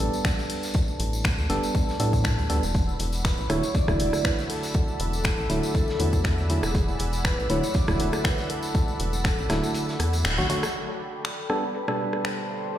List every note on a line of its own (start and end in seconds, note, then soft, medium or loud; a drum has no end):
0.00 0.11 A1 medium
0.00 1.47 G3 medium
0.00 1.47 B3 medium
0.00 1.47 D4 medium
0.00 1.47 A4 loud
0.00 open hi-hat loud
0.13 tambourine medium
0.25 finger snap loud
0.25 kick loud
0.25 snare loud
0.25 closed hi-hat medium
0.25 tambourine medium
0.38 snare soft
0.38 tambourine soft
0.49 open hi-hat medium
0.49 open hi-hat loud
0.63 snare soft
0.63 tambourine medium
0.74 kick loud
0.74 closed hi-hat medium
0.74 tambourine medium
0.88 tambourine soft
0.99 1.34 A1 medium
0.99 closed hi-hat medium
0.99 open hi-hat loud
1.13 tambourine medium
1.24 finger snap loud
1.24 kick loud
1.24 snare loud
1.24 closed hi-hat medium
1.24 tambourine medium
1.38 1.47 D2 medium
1.38 tambourine soft
1.50 1.60 G1 medium
1.50 1.97 G3 medium
1.50 1.97 B3 medium
1.50 1.97 D4 medium
1.50 1.97 A4 loud
1.50 snare soft
1.50 closed hi-hat medium
1.50 open hi-hat loud
1.63 tambourine medium
1.75 kick loud
1.75 closed hi-hat medium
1.75 tambourine medium
1.89 snare soft
1.89 tambourine soft
2.00 2.38 A2 medium
2.00 2.47 G3 medium
2.00 2.47 B3 medium
2.00 2.47 D4 medium
2.00 2.47 A4 medium
2.00 closed hi-hat medium
2.00 open hi-hat loud
2.13 kick medium
2.13 closed hi-hat soft
2.13 tambourine medium
2.24 finger snap loud
2.24 kick loud
2.24 snare loud
2.24 closed hi-hat medium
2.24 tambourine medium
2.38 2.47 D2 medium
2.38 tambourine soft
2.50 2.61 D2 medium
2.50 2.64 G3 medium
2.50 2.64 B3 medium
2.50 2.64 D4 medium
2.50 2.64 A4 medium
2.50 closed hi-hat medium
2.50 open hi-hat loud
2.63 2.96 E1 medium
2.63 tambourine medium
2.74 10.71 D5 medium
2.74 10.71 F#5 medium
2.74 10.71 B5 medium
2.74 10.71 E6 medium
2.74 kick loud
2.74 closed hi-hat medium
2.74 tambourine medium
2.89 tambourine soft
2.99 3.34 E1 loud
2.99 closed hi-hat medium
2.99 open hi-hat loud
3.13 closed hi-hat soft
3.13 tambourine medium
3.25 3.48 B4 loud
3.25 finger snap loud
3.25 kick loud
3.25 snare loud
3.25 closed hi-hat medium
3.25 tambourine medium
3.38 3.47 A1 medium
3.38 tambourine soft
3.50 3.60 D1 medium
3.50 3.64 D3 medium
3.50 3.64 F#3 medium
3.50 3.64 A3 medium
3.50 3.64 E4 loud
3.50 3.76 C#5 loud
3.50 cross-stick medium
3.50 closed hi-hat medium
3.50 open hi-hat loud
3.63 closed hi-hat soft
3.63 tambourine medium
3.75 3.99 D5 loud
3.75 kick loud
3.75 closed hi-hat medium
3.75 tambourine medium
3.88 3.97 E1 loud
3.88 5.47 D3 medium
3.88 5.47 F#3 medium
3.88 5.47 A3 medium
3.88 5.47 E4 medium
3.88 kick medium
3.88 cross-stick medium
3.88 closed hi-hat soft
3.88 tambourine soft
4.00 4.10 E1 loud
4.00 4.26 D5 loud
4.00 closed hi-hat medium
4.00 open hi-hat loud
4.13 cross-stick medium
4.13 tambourine medium
4.25 4.49 B4 loud
4.25 finger snap loud
4.25 kick loud
4.25 snare loud
4.25 closed hi-hat medium
4.25 tambourine medium
4.38 snare soft
4.38 tambourine soft
4.50 6.51 A4 loud
4.50 open hi-hat medium
4.50 open hi-hat loud
4.63 snare soft
4.63 tambourine medium
4.74 kick loud
4.74 closed hi-hat medium
4.74 tambourine medium
4.88 tambourine soft
5.00 5.34 E1 loud
5.00 closed hi-hat medium
5.00 open hi-hat loud
5.13 tambourine medium
5.24 finger snap loud
5.24 kick loud
5.24 snare loud
5.24 closed hi-hat medium
5.24 tambourine medium
5.38 5.47 A1 medium
5.38 tambourine soft
5.50 5.60 D1 medium
5.50 5.97 D3 medium
5.50 5.97 F#3 medium
5.50 5.97 A3 medium
5.50 5.97 E4 medium
5.50 closed hi-hat medium
5.50 open hi-hat loud
5.63 tambourine medium
5.75 kick loud
5.75 closed hi-hat medium
5.75 tambourine medium
5.88 snare soft
5.88 tambourine soft
5.99 6.59 E2 medium
5.99 6.47 D3 medium
5.99 6.47 F#3 medium
5.99 6.47 A3 medium
5.99 6.47 E4 medium
5.99 closed hi-hat medium
5.99 open hi-hat loud
6.13 kick medium
6.13 closed hi-hat soft
6.13 tambourine medium
6.24 finger snap loud
6.24 kick loud
6.24 snare loud
6.24 closed hi-hat medium
6.24 tambourine medium
6.38 tambourine soft
6.50 6.64 D3 medium
6.50 6.64 F#3 medium
6.50 6.64 A3 medium
6.50 6.64 E4 medium
6.50 7.24 G#4 loud
6.50 closed hi-hat medium
6.50 open hi-hat loud
6.63 6.96 E1 loud
6.63 cross-stick medium
6.63 tambourine medium
6.75 kick loud
6.75 closed hi-hat medium
6.75 tambourine medium
6.88 tambourine soft
6.99 7.34 E1 loud
6.99 closed hi-hat medium
6.99 open hi-hat loud
7.13 closed hi-hat soft
7.13 tambourine medium
7.25 7.51 B4 loud
7.25 finger snap loud
7.25 kick loud
7.25 snare loud
7.25 closed hi-hat medium
7.25 tambourine medium
7.38 7.47 A1 medium
7.38 tambourine soft
7.49 7.61 D1 medium
7.49 7.64 D3 loud
7.49 7.64 F#3 medium
7.49 7.64 A3 medium
7.49 7.64 E4 loud
7.49 7.74 C#5 loud
7.49 closed hi-hat medium
7.49 open hi-hat medium
7.63 closed hi-hat soft
7.63 tambourine medium
7.74 8.01 D5 loud
7.74 kick loud
7.74 closed hi-hat medium
7.74 tambourine medium
7.87 7.97 E1 loud
7.87 9.47 D3 medium
7.87 9.47 F#3 medium
7.87 9.47 A3 medium
7.87 9.47 E4 loud
7.87 kick medium
7.87 cross-stick medium
7.87 closed hi-hat soft
7.87 tambourine soft
8.00 8.11 E1 loud
8.00 8.24 A4 medium
8.00 closed hi-hat medium
8.00 open hi-hat loud
8.13 cross-stick medium
8.13 tambourine medium
8.24 8.51 B4 medium
8.24 finger snap loud
8.24 kick loud
8.24 snare loud
8.24 closed hi-hat medium
8.24 tambourine medium
8.38 snare soft
8.38 tambourine soft
8.50 10.50 A4 medium
8.50 open hi-hat loud
8.63 tambourine medium
8.75 kick loud
8.75 closed hi-hat medium
8.75 tambourine medium
8.88 tambourine soft
9.00 9.34 E1 medium
9.00 closed hi-hat medium
9.00 open hi-hat loud
9.13 tambourine medium
9.24 finger snap loud
9.24 kick loud
9.24 snare loud
9.24 closed hi-hat medium
9.24 tambourine medium
9.38 9.48 A1 medium
9.38 tambourine soft
9.50 9.61 D1 medium
9.50 9.97 D3 medium
9.50 9.97 F#3 medium
9.50 9.97 A3 medium
9.50 9.97 E4 loud
9.50 cross-stick medium
9.50 snare loud
9.50 closed hi-hat medium
9.50 open hi-hat loud
9.63 tambourine medium
9.74 closed hi-hat medium
9.74 tambourine medium
9.88 snare soft
9.88 tambourine soft
10.00 10.24 E2 medium
10.00 cross-stick medium
10.00 closed hi-hat medium
10.00 open hi-hat loud
10.13 closed hi-hat soft
10.13 tambourine medium
10.25 10.40 D1 loud
10.25 finger snap loud
10.25 snare loud
10.25 closed hi-hat medium
10.25 tambourine medium
10.38 10.48 B1 medium
10.38 10.47 D3 medium
10.38 10.47 F#3 medium
10.38 10.47 A3 medium
10.38 10.47 F#4 medium
10.38 tambourine soft
10.50 10.64 D3 medium
10.50 10.64 F#3 medium
10.50 10.64 A3 medium
10.50 10.64 F#4 loud
10.50 closed hi-hat medium
10.50 open hi-hat loud
10.63 cross-stick medium
10.63 closed hi-hat soft
10.63 tambourine medium
10.75 12.78 D4 medium
10.75 12.78 A4 medium
10.75 12.78 D5 medium
10.75 12.78 G5 medium
10.75 12.78 B5 medium
10.75 closed hi-hat medium
10.96 12.78 A4 medium
10.96 closed hi-hat medium
11.13 closed hi-hat soft
11.21 12.78 G5 medium
11.25 finger snap loud
11.25 closed hi-hat medium
11.50 11.64 G3 medium
11.50 11.64 B3 medium
11.50 11.64 D4 medium
11.50 11.64 A4 loud
11.50 cross-stick medium
11.50 closed hi-hat medium
11.63 closed hi-hat soft
11.74 12.21 B4 medium
11.74 closed hi-hat medium
11.88 12.78 B2 medium
11.88 12.78 G3 medium
11.88 12.78 D4 medium
11.88 12.78 A4 medium
11.88 cross-stick medium
12.00 closed hi-hat medium
12.13 cross-stick medium
12.25 12.76 C5 loud
12.25 finger snap loud
12.25 closed hi-hat medium
12.38 snare soft
12.50 open hi-hat medium
12.63 snare soft
12.75 12.78 D5 loud
12.75 closed hi-hat medium